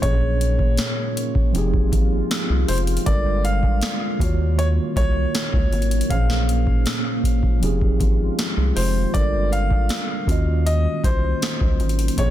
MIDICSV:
0, 0, Header, 1, 6, 480
1, 0, Start_track
1, 0, Tempo, 759494
1, 16, Time_signature, 4, 2, 24, 8
1, 7776, End_track
2, 0, Start_track
2, 0, Title_t, "Grand piano"
2, 0, Program_c, 0, 0
2, 13, Note_on_c, 0, 73, 86
2, 949, Note_off_c, 0, 73, 0
2, 1696, Note_on_c, 0, 72, 93
2, 1750, Note_off_c, 0, 72, 0
2, 1935, Note_on_c, 0, 74, 103
2, 2159, Note_off_c, 0, 74, 0
2, 2177, Note_on_c, 0, 77, 109
2, 2898, Note_on_c, 0, 73, 96
2, 2918, Note_off_c, 0, 77, 0
2, 2952, Note_off_c, 0, 73, 0
2, 3139, Note_on_c, 0, 73, 103
2, 3857, Note_on_c, 0, 77, 101
2, 3879, Note_off_c, 0, 73, 0
2, 4791, Note_off_c, 0, 77, 0
2, 5535, Note_on_c, 0, 72, 86
2, 5775, Note_on_c, 0, 74, 106
2, 5783, Note_off_c, 0, 72, 0
2, 5999, Note_off_c, 0, 74, 0
2, 6019, Note_on_c, 0, 77, 121
2, 6739, Note_on_c, 0, 75, 105
2, 6759, Note_off_c, 0, 77, 0
2, 6961, Note_off_c, 0, 75, 0
2, 6978, Note_on_c, 0, 72, 100
2, 7702, Note_on_c, 0, 73, 86
2, 7719, Note_off_c, 0, 72, 0
2, 7776, Note_off_c, 0, 73, 0
2, 7776, End_track
3, 0, Start_track
3, 0, Title_t, "Tine electric piano"
3, 0, Program_c, 1, 4
3, 0, Control_c, 1, 64, 127
3, 4, Note_on_c, 1, 46, 64
3, 13, Note_on_c, 1, 58, 57
3, 21, Note_on_c, 1, 61, 55
3, 25, Control_c, 1, 64, 0
3, 30, Note_on_c, 1, 68, 59
3, 38, Note_on_c, 1, 73, 67
3, 128, Control_c, 1, 64, 127
3, 951, Note_off_c, 1, 46, 0
3, 955, Note_off_c, 1, 58, 0
3, 960, Note_off_c, 1, 61, 0
3, 964, Note_off_c, 1, 68, 0
3, 964, Note_on_c, 1, 53, 82
3, 968, Note_off_c, 1, 73, 0
3, 974, Note_on_c, 1, 60, 75
3, 982, Note_on_c, 1, 63, 76
3, 984, Control_c, 1, 64, 0
3, 990, Note_on_c, 1, 67, 73
3, 1000, Note_on_c, 1, 68, 90
3, 1100, Control_c, 1, 64, 127
3, 1911, Note_off_c, 1, 53, 0
3, 1916, Note_off_c, 1, 60, 0
3, 1920, Note_off_c, 1, 63, 0
3, 1924, Note_off_c, 1, 67, 0
3, 1929, Note_off_c, 1, 68, 0
3, 1930, Note_on_c, 1, 55, 66
3, 1935, Note_on_c, 1, 62, 57
3, 1939, Note_on_c, 1, 65, 58
3, 1944, Control_c, 1, 64, 0
3, 1944, Note_on_c, 1, 69, 59
3, 1948, Note_on_c, 1, 70, 70
3, 2051, Control_c, 1, 64, 127
3, 2643, Note_on_c, 1, 51, 70
3, 2652, Note_on_c, 1, 58, 63
3, 2653, Note_off_c, 1, 55, 0
3, 2653, Note_off_c, 1, 65, 0
3, 2656, Note_off_c, 1, 62, 0
3, 2660, Note_off_c, 1, 69, 0
3, 2660, Note_on_c, 1, 65, 65
3, 2662, Note_off_c, 1, 70, 0
3, 2666, Control_c, 1, 64, 0
3, 2669, Note_on_c, 1, 66, 64
3, 2679, Note_on_c, 1, 73, 72
3, 2781, Control_c, 1, 64, 127
3, 3825, Note_off_c, 1, 51, 0
3, 3830, Note_off_c, 1, 58, 0
3, 3834, Note_off_c, 1, 65, 0
3, 3839, Note_off_c, 1, 66, 0
3, 3843, Note_on_c, 1, 46, 64
3, 3844, Note_off_c, 1, 73, 0
3, 3852, Note_on_c, 1, 58, 57
3, 3860, Note_on_c, 1, 61, 63
3, 3865, Control_c, 1, 64, 0
3, 3869, Note_on_c, 1, 68, 61
3, 3878, Note_on_c, 1, 72, 72
3, 3991, Control_c, 1, 64, 127
3, 4790, Note_off_c, 1, 46, 0
3, 4795, Note_off_c, 1, 58, 0
3, 4799, Note_off_c, 1, 61, 0
3, 4802, Note_on_c, 1, 53, 83
3, 4804, Note_off_c, 1, 68, 0
3, 4808, Note_off_c, 1, 72, 0
3, 4811, Note_on_c, 1, 60, 73
3, 4820, Note_on_c, 1, 63, 72
3, 4823, Control_c, 1, 64, 0
3, 4829, Note_on_c, 1, 67, 71
3, 4838, Note_on_c, 1, 68, 90
3, 4924, Control_c, 1, 64, 127
3, 5750, Note_off_c, 1, 53, 0
3, 5754, Note_off_c, 1, 60, 0
3, 5759, Note_off_c, 1, 63, 0
3, 5763, Note_off_c, 1, 67, 0
3, 5768, Note_off_c, 1, 68, 0
3, 5772, Note_on_c, 1, 55, 62
3, 5776, Note_on_c, 1, 62, 62
3, 5780, Note_on_c, 1, 65, 59
3, 5784, Control_c, 1, 64, 0
3, 5785, Note_on_c, 1, 69, 58
3, 5790, Note_on_c, 1, 70, 71
3, 5879, Control_c, 1, 64, 127
3, 6484, Note_on_c, 1, 51, 70
3, 6492, Note_on_c, 1, 61, 65
3, 6494, Note_off_c, 1, 55, 0
3, 6494, Note_off_c, 1, 65, 0
3, 6496, Note_off_c, 1, 62, 0
3, 6500, Note_off_c, 1, 69, 0
3, 6501, Note_on_c, 1, 65, 64
3, 6503, Note_off_c, 1, 70, 0
3, 6503, Control_c, 1, 64, 0
3, 6509, Note_on_c, 1, 66, 61
3, 6519, Note_on_c, 1, 75, 75
3, 6598, Control_c, 1, 64, 127
3, 7666, Note_off_c, 1, 51, 0
3, 7670, Note_off_c, 1, 61, 0
3, 7675, Note_off_c, 1, 65, 0
3, 7679, Note_off_c, 1, 66, 0
3, 7683, Note_on_c, 1, 46, 60
3, 7684, Note_off_c, 1, 75, 0
3, 7691, Note_on_c, 1, 58, 62
3, 7700, Note_on_c, 1, 60, 46
3, 7703, Control_c, 1, 64, 0
3, 7709, Note_on_c, 1, 68, 57
3, 7717, Note_on_c, 1, 73, 71
3, 7739, Note_off_c, 1, 60, 0
3, 7741, Note_on_c, 1, 61, 57
3, 7776, Note_off_c, 1, 46, 0
3, 7776, Note_off_c, 1, 58, 0
3, 7776, Note_off_c, 1, 61, 0
3, 7776, Note_off_c, 1, 68, 0
3, 7776, Note_off_c, 1, 73, 0
3, 7776, End_track
4, 0, Start_track
4, 0, Title_t, "Ambient pad"
4, 0, Program_c, 2, 92
4, 0, Note_on_c, 2, 61, 83
4, 17, Note_on_c, 2, 56, 73
4, 17, Note_on_c, 2, 58, 70
4, 18, Note_on_c, 2, 65, 87
4, 955, Note_off_c, 2, 61, 0
4, 967, Note_off_c, 2, 58, 0
4, 977, Note_on_c, 2, 51, 81
4, 977, Note_on_c, 2, 60, 67
4, 1917, Note_off_c, 2, 56, 0
4, 1927, Note_off_c, 2, 51, 0
4, 1927, Note_off_c, 2, 60, 0
4, 1938, Note_on_c, 2, 50, 80
4, 1938, Note_on_c, 2, 55, 70
4, 1939, Note_on_c, 2, 58, 77
4, 2632, Note_off_c, 2, 65, 0
4, 2650, Note_off_c, 2, 50, 0
4, 2650, Note_off_c, 2, 55, 0
4, 2657, Note_on_c, 2, 54, 77
4, 2657, Note_on_c, 2, 63, 90
4, 2658, Note_on_c, 2, 61, 79
4, 3845, Note_off_c, 2, 54, 0
4, 3845, Note_off_c, 2, 63, 0
4, 3857, Note_on_c, 2, 56, 68
4, 3858, Note_on_c, 2, 65, 87
4, 4792, Note_off_c, 2, 58, 0
4, 4796, Note_off_c, 2, 61, 0
4, 4817, Note_on_c, 2, 51, 78
4, 4819, Note_on_c, 2, 60, 71
4, 5758, Note_off_c, 2, 56, 0
4, 5758, Note_off_c, 2, 65, 0
4, 5767, Note_off_c, 2, 51, 0
4, 5768, Note_off_c, 2, 60, 0
4, 5779, Note_on_c, 2, 55, 69
4, 5779, Note_on_c, 2, 58, 71
4, 5780, Note_on_c, 2, 50, 78
4, 5780, Note_on_c, 2, 65, 82
4, 6490, Note_off_c, 2, 55, 0
4, 6491, Note_off_c, 2, 50, 0
4, 6491, Note_off_c, 2, 65, 0
4, 6497, Note_on_c, 2, 54, 71
4, 6497, Note_on_c, 2, 61, 77
4, 6497, Note_on_c, 2, 63, 88
4, 7684, Note_off_c, 2, 63, 0
4, 7685, Note_off_c, 2, 54, 0
4, 7698, Note_on_c, 2, 65, 86
4, 7699, Note_on_c, 2, 56, 71
4, 7776, Note_off_c, 2, 56, 0
4, 7776, Note_off_c, 2, 58, 0
4, 7776, Note_off_c, 2, 61, 0
4, 7776, Note_off_c, 2, 65, 0
4, 7776, End_track
5, 0, Start_track
5, 0, Title_t, "Analog synth bass"
5, 0, Program_c, 3, 38
5, 18, Note_on_c, 3, 34, 117
5, 390, Note_off_c, 3, 34, 0
5, 978, Note_on_c, 3, 29, 111
5, 1164, Note_off_c, 3, 29, 0
5, 1216, Note_on_c, 3, 32, 90
5, 1402, Note_off_c, 3, 32, 0
5, 1578, Note_on_c, 3, 36, 95
5, 1671, Note_off_c, 3, 36, 0
5, 1698, Note_on_c, 3, 29, 91
5, 1883, Note_off_c, 3, 29, 0
5, 1937, Note_on_c, 3, 31, 111
5, 2309, Note_off_c, 3, 31, 0
5, 2653, Note_on_c, 3, 39, 102
5, 3026, Note_off_c, 3, 39, 0
5, 3136, Note_on_c, 3, 36, 88
5, 3322, Note_off_c, 3, 36, 0
5, 3498, Note_on_c, 3, 37, 88
5, 3590, Note_off_c, 3, 37, 0
5, 3619, Note_on_c, 3, 32, 95
5, 3804, Note_off_c, 3, 32, 0
5, 3858, Note_on_c, 3, 34, 117
5, 4229, Note_off_c, 3, 34, 0
5, 4819, Note_on_c, 3, 29, 105
5, 5004, Note_off_c, 3, 29, 0
5, 5057, Note_on_c, 3, 32, 94
5, 5243, Note_off_c, 3, 32, 0
5, 5417, Note_on_c, 3, 36, 94
5, 5510, Note_off_c, 3, 36, 0
5, 5537, Note_on_c, 3, 29, 89
5, 5723, Note_off_c, 3, 29, 0
5, 5778, Note_on_c, 3, 31, 110
5, 6149, Note_off_c, 3, 31, 0
5, 6493, Note_on_c, 3, 39, 98
5, 6867, Note_off_c, 3, 39, 0
5, 6976, Note_on_c, 3, 36, 91
5, 7162, Note_off_c, 3, 36, 0
5, 7337, Note_on_c, 3, 37, 85
5, 7430, Note_off_c, 3, 37, 0
5, 7457, Note_on_c, 3, 32, 94
5, 7643, Note_off_c, 3, 32, 0
5, 7697, Note_on_c, 3, 34, 118
5, 7776, Note_off_c, 3, 34, 0
5, 7776, End_track
6, 0, Start_track
6, 0, Title_t, "Drums"
6, 17, Note_on_c, 9, 36, 114
6, 18, Note_on_c, 9, 42, 79
6, 80, Note_off_c, 9, 36, 0
6, 81, Note_off_c, 9, 42, 0
6, 260, Note_on_c, 9, 42, 64
6, 323, Note_off_c, 9, 42, 0
6, 374, Note_on_c, 9, 36, 99
6, 437, Note_off_c, 9, 36, 0
6, 490, Note_on_c, 9, 42, 71
6, 496, Note_on_c, 9, 38, 106
6, 553, Note_off_c, 9, 42, 0
6, 559, Note_off_c, 9, 38, 0
6, 740, Note_on_c, 9, 42, 76
6, 803, Note_off_c, 9, 42, 0
6, 854, Note_on_c, 9, 36, 98
6, 917, Note_off_c, 9, 36, 0
6, 978, Note_on_c, 9, 42, 70
6, 1041, Note_off_c, 9, 42, 0
6, 1098, Note_on_c, 9, 36, 101
6, 1161, Note_off_c, 9, 36, 0
6, 1215, Note_on_c, 9, 36, 96
6, 1218, Note_on_c, 9, 42, 69
6, 1278, Note_off_c, 9, 36, 0
6, 1281, Note_off_c, 9, 42, 0
6, 1459, Note_on_c, 9, 42, 71
6, 1461, Note_on_c, 9, 38, 108
6, 1522, Note_off_c, 9, 42, 0
6, 1524, Note_off_c, 9, 38, 0
6, 1697, Note_on_c, 9, 42, 42
6, 1697, Note_on_c, 9, 46, 72
6, 1756, Note_off_c, 9, 42, 0
6, 1756, Note_on_c, 9, 42, 50
6, 1761, Note_off_c, 9, 46, 0
6, 1816, Note_off_c, 9, 42, 0
6, 1816, Note_on_c, 9, 42, 64
6, 1875, Note_off_c, 9, 42, 0
6, 1875, Note_on_c, 9, 42, 72
6, 1936, Note_off_c, 9, 42, 0
6, 1936, Note_on_c, 9, 36, 120
6, 1936, Note_on_c, 9, 42, 78
6, 2000, Note_off_c, 9, 36, 0
6, 2000, Note_off_c, 9, 42, 0
6, 2179, Note_on_c, 9, 42, 65
6, 2242, Note_off_c, 9, 42, 0
6, 2294, Note_on_c, 9, 36, 95
6, 2357, Note_off_c, 9, 36, 0
6, 2411, Note_on_c, 9, 42, 71
6, 2417, Note_on_c, 9, 38, 112
6, 2474, Note_off_c, 9, 42, 0
6, 2480, Note_off_c, 9, 38, 0
6, 2652, Note_on_c, 9, 36, 84
6, 2663, Note_on_c, 9, 42, 81
6, 2715, Note_off_c, 9, 36, 0
6, 2726, Note_off_c, 9, 42, 0
6, 2899, Note_on_c, 9, 42, 72
6, 2963, Note_off_c, 9, 42, 0
6, 3135, Note_on_c, 9, 36, 93
6, 3139, Note_on_c, 9, 42, 68
6, 3199, Note_off_c, 9, 36, 0
6, 3202, Note_off_c, 9, 42, 0
6, 3379, Note_on_c, 9, 42, 68
6, 3381, Note_on_c, 9, 38, 111
6, 3442, Note_off_c, 9, 42, 0
6, 3444, Note_off_c, 9, 38, 0
6, 3497, Note_on_c, 9, 36, 91
6, 3560, Note_off_c, 9, 36, 0
6, 3618, Note_on_c, 9, 42, 40
6, 3678, Note_off_c, 9, 42, 0
6, 3678, Note_on_c, 9, 42, 51
6, 3737, Note_off_c, 9, 42, 0
6, 3737, Note_on_c, 9, 42, 64
6, 3798, Note_off_c, 9, 42, 0
6, 3798, Note_on_c, 9, 42, 74
6, 3857, Note_on_c, 9, 36, 109
6, 3858, Note_off_c, 9, 42, 0
6, 3858, Note_on_c, 9, 42, 81
6, 3920, Note_off_c, 9, 36, 0
6, 3922, Note_off_c, 9, 42, 0
6, 3980, Note_on_c, 9, 38, 70
6, 4044, Note_off_c, 9, 38, 0
6, 4101, Note_on_c, 9, 42, 64
6, 4164, Note_off_c, 9, 42, 0
6, 4215, Note_on_c, 9, 36, 101
6, 4278, Note_off_c, 9, 36, 0
6, 4334, Note_on_c, 9, 42, 70
6, 4340, Note_on_c, 9, 38, 114
6, 4397, Note_off_c, 9, 42, 0
6, 4403, Note_off_c, 9, 38, 0
6, 4573, Note_on_c, 9, 36, 84
6, 4583, Note_on_c, 9, 42, 84
6, 4636, Note_off_c, 9, 36, 0
6, 4646, Note_off_c, 9, 42, 0
6, 4695, Note_on_c, 9, 36, 99
6, 4759, Note_off_c, 9, 36, 0
6, 4820, Note_on_c, 9, 42, 73
6, 4883, Note_off_c, 9, 42, 0
6, 4939, Note_on_c, 9, 36, 99
6, 5002, Note_off_c, 9, 36, 0
6, 5056, Note_on_c, 9, 36, 96
6, 5059, Note_on_c, 9, 42, 67
6, 5119, Note_off_c, 9, 36, 0
6, 5122, Note_off_c, 9, 42, 0
6, 5300, Note_on_c, 9, 42, 67
6, 5302, Note_on_c, 9, 38, 114
6, 5363, Note_off_c, 9, 42, 0
6, 5365, Note_off_c, 9, 38, 0
6, 5540, Note_on_c, 9, 46, 74
6, 5603, Note_off_c, 9, 46, 0
6, 5778, Note_on_c, 9, 36, 114
6, 5780, Note_on_c, 9, 42, 81
6, 5841, Note_off_c, 9, 36, 0
6, 5843, Note_off_c, 9, 42, 0
6, 6021, Note_on_c, 9, 42, 65
6, 6084, Note_off_c, 9, 42, 0
6, 6135, Note_on_c, 9, 36, 103
6, 6198, Note_off_c, 9, 36, 0
6, 6252, Note_on_c, 9, 42, 71
6, 6259, Note_on_c, 9, 38, 112
6, 6316, Note_off_c, 9, 42, 0
6, 6322, Note_off_c, 9, 38, 0
6, 6492, Note_on_c, 9, 36, 83
6, 6503, Note_on_c, 9, 42, 78
6, 6555, Note_off_c, 9, 36, 0
6, 6566, Note_off_c, 9, 42, 0
6, 6741, Note_on_c, 9, 42, 75
6, 6804, Note_off_c, 9, 42, 0
6, 6976, Note_on_c, 9, 36, 90
6, 6979, Note_on_c, 9, 42, 67
6, 7039, Note_off_c, 9, 36, 0
6, 7043, Note_off_c, 9, 42, 0
6, 7220, Note_on_c, 9, 42, 72
6, 7222, Note_on_c, 9, 38, 110
6, 7283, Note_off_c, 9, 42, 0
6, 7285, Note_off_c, 9, 38, 0
6, 7337, Note_on_c, 9, 36, 92
6, 7400, Note_off_c, 9, 36, 0
6, 7456, Note_on_c, 9, 42, 41
6, 7517, Note_off_c, 9, 42, 0
6, 7517, Note_on_c, 9, 42, 53
6, 7576, Note_off_c, 9, 42, 0
6, 7576, Note_on_c, 9, 42, 61
6, 7636, Note_off_c, 9, 42, 0
6, 7636, Note_on_c, 9, 42, 73
6, 7696, Note_on_c, 9, 36, 112
6, 7697, Note_off_c, 9, 42, 0
6, 7697, Note_on_c, 9, 42, 81
6, 7759, Note_off_c, 9, 36, 0
6, 7760, Note_off_c, 9, 42, 0
6, 7776, End_track
0, 0, End_of_file